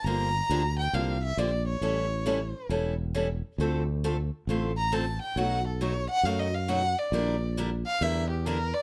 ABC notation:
X:1
M:4/4
L:1/8
Q:"Swing" 1/4=136
K:Gdor
V:1 name="Violin"
b3 g f e d ^c- | ^c4 z4 | z4 z b a g | ^f A ^c f (3=f ^d f ^f =d- |
d2 z f e G B d |]
V:2 name="Steel-string acoustic guitar"
[D,F,B,DG] z [D,F,B,DG] z [D,F,B,DG] z [D,F,B,DG] z | [E,G,^CEA] z [E,G,CEA] z [E,G,CEA] z [E,G,CEA] z | [D,A,CFA] z [D,A,CFA] z [D,A,CFA] z [D,A,CFA] z | [=B,,^F,A,^D^F] z [B,,F,A,DF] z [B,,F,A,DF] z [B,,F,A,DF] z |
[D,G,DEB] z [D,G,DEB] z [D,G,DEB] z [D,G,DEB] z |]
V:3 name="Fretless electric bass" clef=bass
G,,,2 D,,2 C,,2 B,,,2 | A,,,4 E,,,4 | D,,4 A,,,4 | =B,,,4 ^F,,4 |
B,,,4 E,,4 |]